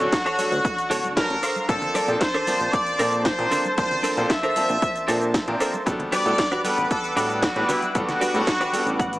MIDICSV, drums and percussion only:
0, 0, Header, 1, 2, 480
1, 0, Start_track
1, 0, Tempo, 521739
1, 1555, Time_signature, 4, 2, 24, 8
1, 8456, End_track
2, 0, Start_track
2, 0, Title_t, "Drums"
2, 1, Note_on_c, 9, 42, 38
2, 8, Note_on_c, 9, 82, 33
2, 93, Note_off_c, 9, 42, 0
2, 100, Note_off_c, 9, 82, 0
2, 114, Note_on_c, 9, 38, 113
2, 116, Note_on_c, 9, 36, 113
2, 117, Note_on_c, 9, 42, 64
2, 124, Note_on_c, 9, 82, 45
2, 206, Note_off_c, 9, 38, 0
2, 208, Note_off_c, 9, 36, 0
2, 209, Note_off_c, 9, 42, 0
2, 216, Note_off_c, 9, 82, 0
2, 240, Note_on_c, 9, 37, 76
2, 240, Note_on_c, 9, 42, 36
2, 247, Note_on_c, 9, 82, 29
2, 332, Note_off_c, 9, 37, 0
2, 332, Note_off_c, 9, 42, 0
2, 339, Note_off_c, 9, 82, 0
2, 352, Note_on_c, 9, 63, 60
2, 356, Note_on_c, 9, 46, 102
2, 363, Note_on_c, 9, 82, 80
2, 444, Note_off_c, 9, 63, 0
2, 448, Note_off_c, 9, 46, 0
2, 455, Note_off_c, 9, 82, 0
2, 481, Note_on_c, 9, 42, 37
2, 488, Note_on_c, 9, 82, 32
2, 573, Note_off_c, 9, 42, 0
2, 580, Note_off_c, 9, 82, 0
2, 595, Note_on_c, 9, 36, 127
2, 599, Note_on_c, 9, 42, 64
2, 606, Note_on_c, 9, 82, 41
2, 687, Note_off_c, 9, 36, 0
2, 691, Note_off_c, 9, 42, 0
2, 698, Note_off_c, 9, 82, 0
2, 722, Note_on_c, 9, 42, 40
2, 729, Note_on_c, 9, 82, 31
2, 814, Note_off_c, 9, 42, 0
2, 821, Note_off_c, 9, 82, 0
2, 836, Note_on_c, 9, 46, 105
2, 843, Note_on_c, 9, 82, 78
2, 928, Note_off_c, 9, 46, 0
2, 935, Note_off_c, 9, 82, 0
2, 958, Note_on_c, 9, 63, 64
2, 968, Note_on_c, 9, 82, 34
2, 1050, Note_off_c, 9, 63, 0
2, 1060, Note_off_c, 9, 82, 0
2, 1075, Note_on_c, 9, 36, 115
2, 1075, Note_on_c, 9, 38, 125
2, 1077, Note_on_c, 9, 42, 69
2, 1084, Note_on_c, 9, 82, 47
2, 1167, Note_off_c, 9, 36, 0
2, 1167, Note_off_c, 9, 38, 0
2, 1169, Note_off_c, 9, 42, 0
2, 1176, Note_off_c, 9, 82, 0
2, 1199, Note_on_c, 9, 42, 39
2, 1291, Note_off_c, 9, 42, 0
2, 1314, Note_on_c, 9, 37, 66
2, 1314, Note_on_c, 9, 46, 101
2, 1321, Note_on_c, 9, 82, 73
2, 1406, Note_off_c, 9, 37, 0
2, 1406, Note_off_c, 9, 46, 0
2, 1413, Note_off_c, 9, 82, 0
2, 1433, Note_on_c, 9, 63, 68
2, 1436, Note_on_c, 9, 42, 36
2, 1443, Note_on_c, 9, 82, 32
2, 1525, Note_off_c, 9, 63, 0
2, 1528, Note_off_c, 9, 42, 0
2, 1535, Note_off_c, 9, 82, 0
2, 1553, Note_on_c, 9, 42, 67
2, 1554, Note_on_c, 9, 36, 127
2, 1561, Note_on_c, 9, 82, 52
2, 1645, Note_off_c, 9, 42, 0
2, 1646, Note_off_c, 9, 36, 0
2, 1653, Note_off_c, 9, 82, 0
2, 1672, Note_on_c, 9, 64, 82
2, 1677, Note_on_c, 9, 42, 38
2, 1764, Note_off_c, 9, 64, 0
2, 1769, Note_off_c, 9, 42, 0
2, 1790, Note_on_c, 9, 63, 68
2, 1794, Note_on_c, 9, 37, 86
2, 1794, Note_on_c, 9, 46, 104
2, 1801, Note_on_c, 9, 82, 76
2, 1882, Note_off_c, 9, 63, 0
2, 1886, Note_off_c, 9, 37, 0
2, 1886, Note_off_c, 9, 46, 0
2, 1893, Note_off_c, 9, 82, 0
2, 1916, Note_on_c, 9, 42, 39
2, 1924, Note_on_c, 9, 82, 36
2, 2008, Note_off_c, 9, 42, 0
2, 2016, Note_off_c, 9, 82, 0
2, 2030, Note_on_c, 9, 38, 119
2, 2033, Note_on_c, 9, 42, 67
2, 2034, Note_on_c, 9, 36, 110
2, 2040, Note_on_c, 9, 82, 44
2, 2122, Note_off_c, 9, 38, 0
2, 2125, Note_off_c, 9, 42, 0
2, 2126, Note_off_c, 9, 36, 0
2, 2132, Note_off_c, 9, 82, 0
2, 2158, Note_on_c, 9, 37, 82
2, 2158, Note_on_c, 9, 42, 38
2, 2165, Note_on_c, 9, 82, 30
2, 2250, Note_off_c, 9, 37, 0
2, 2250, Note_off_c, 9, 42, 0
2, 2257, Note_off_c, 9, 82, 0
2, 2272, Note_on_c, 9, 63, 64
2, 2275, Note_on_c, 9, 46, 96
2, 2282, Note_on_c, 9, 82, 78
2, 2364, Note_off_c, 9, 63, 0
2, 2367, Note_off_c, 9, 46, 0
2, 2374, Note_off_c, 9, 82, 0
2, 2396, Note_on_c, 9, 42, 39
2, 2403, Note_on_c, 9, 82, 34
2, 2488, Note_off_c, 9, 42, 0
2, 2495, Note_off_c, 9, 82, 0
2, 2514, Note_on_c, 9, 36, 127
2, 2514, Note_on_c, 9, 42, 64
2, 2522, Note_on_c, 9, 82, 43
2, 2606, Note_off_c, 9, 36, 0
2, 2606, Note_off_c, 9, 42, 0
2, 2614, Note_off_c, 9, 82, 0
2, 2636, Note_on_c, 9, 42, 39
2, 2643, Note_on_c, 9, 82, 33
2, 2728, Note_off_c, 9, 42, 0
2, 2735, Note_off_c, 9, 82, 0
2, 2754, Note_on_c, 9, 46, 106
2, 2761, Note_on_c, 9, 82, 73
2, 2846, Note_off_c, 9, 46, 0
2, 2853, Note_off_c, 9, 82, 0
2, 2876, Note_on_c, 9, 42, 40
2, 2884, Note_on_c, 9, 82, 33
2, 2968, Note_off_c, 9, 42, 0
2, 2976, Note_off_c, 9, 82, 0
2, 2990, Note_on_c, 9, 38, 123
2, 2992, Note_on_c, 9, 42, 65
2, 2995, Note_on_c, 9, 36, 112
2, 2999, Note_on_c, 9, 82, 47
2, 3082, Note_off_c, 9, 38, 0
2, 3084, Note_off_c, 9, 42, 0
2, 3087, Note_off_c, 9, 36, 0
2, 3091, Note_off_c, 9, 82, 0
2, 3117, Note_on_c, 9, 42, 39
2, 3209, Note_off_c, 9, 42, 0
2, 3234, Note_on_c, 9, 46, 93
2, 3236, Note_on_c, 9, 64, 94
2, 3241, Note_on_c, 9, 82, 82
2, 3326, Note_off_c, 9, 46, 0
2, 3328, Note_off_c, 9, 64, 0
2, 3333, Note_off_c, 9, 82, 0
2, 3356, Note_on_c, 9, 42, 38
2, 3360, Note_on_c, 9, 63, 69
2, 3363, Note_on_c, 9, 82, 33
2, 3448, Note_off_c, 9, 42, 0
2, 3452, Note_off_c, 9, 63, 0
2, 3455, Note_off_c, 9, 82, 0
2, 3475, Note_on_c, 9, 42, 74
2, 3476, Note_on_c, 9, 36, 122
2, 3482, Note_on_c, 9, 82, 49
2, 3567, Note_off_c, 9, 42, 0
2, 3568, Note_off_c, 9, 36, 0
2, 3574, Note_off_c, 9, 82, 0
2, 3598, Note_on_c, 9, 42, 40
2, 3600, Note_on_c, 9, 64, 90
2, 3690, Note_off_c, 9, 42, 0
2, 3692, Note_off_c, 9, 64, 0
2, 3714, Note_on_c, 9, 46, 99
2, 3714, Note_on_c, 9, 63, 60
2, 3722, Note_on_c, 9, 82, 79
2, 3806, Note_off_c, 9, 46, 0
2, 3806, Note_off_c, 9, 63, 0
2, 3814, Note_off_c, 9, 82, 0
2, 3840, Note_on_c, 9, 42, 42
2, 3847, Note_on_c, 9, 82, 37
2, 3932, Note_off_c, 9, 42, 0
2, 3939, Note_off_c, 9, 82, 0
2, 3954, Note_on_c, 9, 38, 120
2, 3956, Note_on_c, 9, 36, 98
2, 3957, Note_on_c, 9, 42, 66
2, 3964, Note_on_c, 9, 82, 49
2, 4046, Note_off_c, 9, 38, 0
2, 4048, Note_off_c, 9, 36, 0
2, 4049, Note_off_c, 9, 42, 0
2, 4056, Note_off_c, 9, 82, 0
2, 4079, Note_on_c, 9, 37, 83
2, 4079, Note_on_c, 9, 42, 39
2, 4086, Note_on_c, 9, 82, 32
2, 4171, Note_off_c, 9, 37, 0
2, 4171, Note_off_c, 9, 42, 0
2, 4178, Note_off_c, 9, 82, 0
2, 4193, Note_on_c, 9, 63, 58
2, 4195, Note_on_c, 9, 46, 96
2, 4202, Note_on_c, 9, 82, 83
2, 4285, Note_off_c, 9, 63, 0
2, 4287, Note_off_c, 9, 46, 0
2, 4294, Note_off_c, 9, 82, 0
2, 4318, Note_on_c, 9, 42, 39
2, 4326, Note_on_c, 9, 82, 37
2, 4410, Note_off_c, 9, 42, 0
2, 4418, Note_off_c, 9, 82, 0
2, 4436, Note_on_c, 9, 42, 65
2, 4437, Note_on_c, 9, 36, 121
2, 4443, Note_on_c, 9, 82, 47
2, 4528, Note_off_c, 9, 42, 0
2, 4529, Note_off_c, 9, 36, 0
2, 4535, Note_off_c, 9, 82, 0
2, 4560, Note_on_c, 9, 42, 41
2, 4567, Note_on_c, 9, 82, 34
2, 4652, Note_off_c, 9, 42, 0
2, 4659, Note_off_c, 9, 82, 0
2, 4677, Note_on_c, 9, 46, 100
2, 4684, Note_on_c, 9, 82, 81
2, 4769, Note_off_c, 9, 46, 0
2, 4776, Note_off_c, 9, 82, 0
2, 4799, Note_on_c, 9, 42, 39
2, 4807, Note_on_c, 9, 82, 37
2, 4891, Note_off_c, 9, 42, 0
2, 4899, Note_off_c, 9, 82, 0
2, 4914, Note_on_c, 9, 38, 118
2, 4917, Note_on_c, 9, 36, 107
2, 4917, Note_on_c, 9, 42, 70
2, 4924, Note_on_c, 9, 82, 50
2, 5006, Note_off_c, 9, 38, 0
2, 5009, Note_off_c, 9, 36, 0
2, 5009, Note_off_c, 9, 42, 0
2, 5016, Note_off_c, 9, 82, 0
2, 5039, Note_on_c, 9, 42, 39
2, 5131, Note_off_c, 9, 42, 0
2, 5156, Note_on_c, 9, 37, 71
2, 5156, Note_on_c, 9, 46, 87
2, 5163, Note_on_c, 9, 82, 81
2, 5248, Note_off_c, 9, 37, 0
2, 5248, Note_off_c, 9, 46, 0
2, 5255, Note_off_c, 9, 82, 0
2, 5279, Note_on_c, 9, 63, 69
2, 5280, Note_on_c, 9, 42, 41
2, 5287, Note_on_c, 9, 82, 35
2, 5371, Note_off_c, 9, 63, 0
2, 5372, Note_off_c, 9, 42, 0
2, 5379, Note_off_c, 9, 82, 0
2, 5396, Note_on_c, 9, 36, 120
2, 5397, Note_on_c, 9, 42, 76
2, 5404, Note_on_c, 9, 82, 51
2, 5488, Note_off_c, 9, 36, 0
2, 5489, Note_off_c, 9, 42, 0
2, 5496, Note_off_c, 9, 82, 0
2, 5514, Note_on_c, 9, 64, 101
2, 5518, Note_on_c, 9, 42, 40
2, 5606, Note_off_c, 9, 64, 0
2, 5610, Note_off_c, 9, 42, 0
2, 5633, Note_on_c, 9, 63, 71
2, 5634, Note_on_c, 9, 37, 84
2, 5634, Note_on_c, 9, 46, 100
2, 5641, Note_on_c, 9, 82, 86
2, 5725, Note_off_c, 9, 63, 0
2, 5726, Note_off_c, 9, 37, 0
2, 5726, Note_off_c, 9, 46, 0
2, 5733, Note_off_c, 9, 82, 0
2, 5758, Note_on_c, 9, 42, 41
2, 5765, Note_on_c, 9, 82, 37
2, 5850, Note_off_c, 9, 42, 0
2, 5857, Note_off_c, 9, 82, 0
2, 5872, Note_on_c, 9, 38, 122
2, 5874, Note_on_c, 9, 42, 69
2, 5876, Note_on_c, 9, 36, 99
2, 5881, Note_on_c, 9, 82, 49
2, 5964, Note_off_c, 9, 38, 0
2, 5966, Note_off_c, 9, 42, 0
2, 5968, Note_off_c, 9, 36, 0
2, 5973, Note_off_c, 9, 82, 0
2, 5996, Note_on_c, 9, 37, 82
2, 5996, Note_on_c, 9, 42, 40
2, 6003, Note_on_c, 9, 82, 33
2, 6088, Note_off_c, 9, 37, 0
2, 6088, Note_off_c, 9, 42, 0
2, 6095, Note_off_c, 9, 82, 0
2, 6108, Note_on_c, 9, 63, 63
2, 6114, Note_on_c, 9, 46, 91
2, 6121, Note_on_c, 9, 82, 87
2, 6200, Note_off_c, 9, 63, 0
2, 6206, Note_off_c, 9, 46, 0
2, 6213, Note_off_c, 9, 82, 0
2, 6237, Note_on_c, 9, 42, 41
2, 6244, Note_on_c, 9, 82, 35
2, 6329, Note_off_c, 9, 42, 0
2, 6336, Note_off_c, 9, 82, 0
2, 6355, Note_on_c, 9, 36, 119
2, 6355, Note_on_c, 9, 42, 69
2, 6362, Note_on_c, 9, 82, 48
2, 6447, Note_off_c, 9, 36, 0
2, 6447, Note_off_c, 9, 42, 0
2, 6454, Note_off_c, 9, 82, 0
2, 6478, Note_on_c, 9, 42, 43
2, 6485, Note_on_c, 9, 82, 36
2, 6570, Note_off_c, 9, 42, 0
2, 6577, Note_off_c, 9, 82, 0
2, 6594, Note_on_c, 9, 46, 95
2, 6601, Note_on_c, 9, 82, 81
2, 6686, Note_off_c, 9, 46, 0
2, 6693, Note_off_c, 9, 82, 0
2, 6716, Note_on_c, 9, 42, 42
2, 6723, Note_on_c, 9, 82, 36
2, 6808, Note_off_c, 9, 42, 0
2, 6815, Note_off_c, 9, 82, 0
2, 6830, Note_on_c, 9, 38, 126
2, 6833, Note_on_c, 9, 42, 70
2, 6835, Note_on_c, 9, 36, 107
2, 6840, Note_on_c, 9, 82, 51
2, 6922, Note_off_c, 9, 38, 0
2, 6925, Note_off_c, 9, 42, 0
2, 6927, Note_off_c, 9, 36, 0
2, 6932, Note_off_c, 9, 82, 0
2, 6955, Note_on_c, 9, 42, 42
2, 7047, Note_off_c, 9, 42, 0
2, 7073, Note_on_c, 9, 46, 88
2, 7073, Note_on_c, 9, 64, 99
2, 7080, Note_on_c, 9, 82, 84
2, 7165, Note_off_c, 9, 46, 0
2, 7165, Note_off_c, 9, 64, 0
2, 7172, Note_off_c, 9, 82, 0
2, 7197, Note_on_c, 9, 42, 43
2, 7199, Note_on_c, 9, 63, 62
2, 7205, Note_on_c, 9, 82, 35
2, 7289, Note_off_c, 9, 42, 0
2, 7291, Note_off_c, 9, 63, 0
2, 7297, Note_off_c, 9, 82, 0
2, 7314, Note_on_c, 9, 42, 74
2, 7315, Note_on_c, 9, 36, 123
2, 7321, Note_on_c, 9, 82, 52
2, 7406, Note_off_c, 9, 42, 0
2, 7407, Note_off_c, 9, 36, 0
2, 7413, Note_off_c, 9, 82, 0
2, 7437, Note_on_c, 9, 38, 38
2, 7438, Note_on_c, 9, 64, 103
2, 7439, Note_on_c, 9, 42, 42
2, 7446, Note_on_c, 9, 82, 30
2, 7529, Note_off_c, 9, 38, 0
2, 7530, Note_off_c, 9, 64, 0
2, 7531, Note_off_c, 9, 42, 0
2, 7538, Note_off_c, 9, 82, 0
2, 7553, Note_on_c, 9, 63, 66
2, 7556, Note_on_c, 9, 46, 96
2, 7564, Note_on_c, 9, 82, 80
2, 7645, Note_off_c, 9, 63, 0
2, 7648, Note_off_c, 9, 46, 0
2, 7656, Note_off_c, 9, 82, 0
2, 7680, Note_on_c, 9, 42, 43
2, 7687, Note_on_c, 9, 82, 34
2, 7772, Note_off_c, 9, 42, 0
2, 7779, Note_off_c, 9, 82, 0
2, 7794, Note_on_c, 9, 38, 121
2, 7795, Note_on_c, 9, 36, 102
2, 7797, Note_on_c, 9, 42, 71
2, 7804, Note_on_c, 9, 82, 49
2, 7886, Note_off_c, 9, 38, 0
2, 7887, Note_off_c, 9, 36, 0
2, 7889, Note_off_c, 9, 42, 0
2, 7896, Note_off_c, 9, 82, 0
2, 7920, Note_on_c, 9, 37, 73
2, 7920, Note_on_c, 9, 42, 42
2, 7927, Note_on_c, 9, 82, 31
2, 8012, Note_off_c, 9, 37, 0
2, 8012, Note_off_c, 9, 42, 0
2, 8019, Note_off_c, 9, 82, 0
2, 8027, Note_on_c, 9, 63, 62
2, 8037, Note_on_c, 9, 46, 91
2, 8044, Note_on_c, 9, 82, 80
2, 8119, Note_off_c, 9, 63, 0
2, 8129, Note_off_c, 9, 46, 0
2, 8136, Note_off_c, 9, 82, 0
2, 8159, Note_on_c, 9, 42, 42
2, 8166, Note_on_c, 9, 82, 35
2, 8251, Note_off_c, 9, 42, 0
2, 8258, Note_off_c, 9, 82, 0
2, 8275, Note_on_c, 9, 36, 121
2, 8277, Note_on_c, 9, 42, 67
2, 8284, Note_on_c, 9, 82, 46
2, 8367, Note_off_c, 9, 36, 0
2, 8369, Note_off_c, 9, 42, 0
2, 8376, Note_off_c, 9, 82, 0
2, 8399, Note_on_c, 9, 42, 46
2, 8406, Note_on_c, 9, 82, 34
2, 8456, Note_off_c, 9, 42, 0
2, 8456, Note_off_c, 9, 82, 0
2, 8456, End_track
0, 0, End_of_file